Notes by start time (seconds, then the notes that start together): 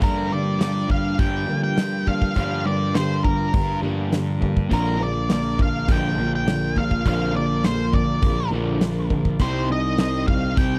0.01 G2 D3 F3 G3 A#3 D4 F4 G4 A#4, kick, open hi-hat
0.30 G2 D3 F3 A#3 D4 G4 D5
0.59 G2 D3 F3 A#3 D4 G4 D5, snare, open hi-hat
0.88 G2 D3 F5, kick
1.18 G2 D3 G3 G5, kick, open hi-hat
1.47 G2 D3 F3 A#3 D4 G4
1.64 G5
1.76 G2 D3 F3 A#3 D4 G4, snare, open hi-hat
2.06 G2 D3 F3 A#3 D4 G4 F5, kick
2.22 kick
2.34 G2 D3 F3 G3 A#3 D4 F4 G4 F5, kick, open hi-hat
2.65 G2 D3 F3 A#3 D4 G4 D5
2.94 G2 D3 F3 A#3 D4 G4 C5, snare, open hi-hat
3.24 G2 D3 A#4, kick
3.54 G2 D3, kick, open hi-hat
3.82 G2 D3 F3 G3 A#3 D4 G4
4.12 G2 D3 F3 A#3 D4 G4, snare, open hi-hat
4.41 G2 D3 F3 A#3 D4 G4, kick
4.57 kick
4.69 A#1 A#2 D3 F3 A#3 D4 F4 A#4, kick, open hi-hat
4.99 A#2 D3 F3 A#3 D4 A#4 D5
5.29 A#2 D3 F3 A#3 D4 A#4 D5, snare, open hi-hat
5.58 A#2 D3 F5, kick
5.88 A#1 A#2 D3 F3 G5, kick, open hi-hat
6.17 A#1 A#2 D3 F3 A#3 D4 A#4
6.35 G5
6.46 A#2 D3 F3 A#3 D4 A#4, snare, open hi-hat
6.75 A#2 D3 F3 A#3 D4 A#4 F5, kick
6.91 kick
7.05 A#1 A#2 D3 F3 A#3 D4 F4 A#4 F5, kick, open hi-hat
7.33 A#2 D3 F3 A#3 D4 A#4 D5
7.63 A#2 D3 F3 A#3 D4 A#4 C5, snare, open hi-hat
7.93 A#2 D3 D5, kick
8.22 A#1 A#2 D3, kick, open hi-hat
8.51 A#1 A#2 D3 F3 A#3 D4 A#4
8.81 A#2 D3 F3 A#3 D4 A#4, snare, open hi-hat
9.10 A#2 D3 F3 A#3 D4 A#4, kick
9.25 kick
9.39 C2 C3 G3 C4 D#4 G4 C5, kick, open hi-hat
9.69 C3 G3 C4 D#4 G4 D#5
9.97 C3 G3 C4 D#4 G4 D#5, snare, open hi-hat
10.28 C3 G3 F5, kick
10.56 C2 C3 G3 C4 G5, kick, open hi-hat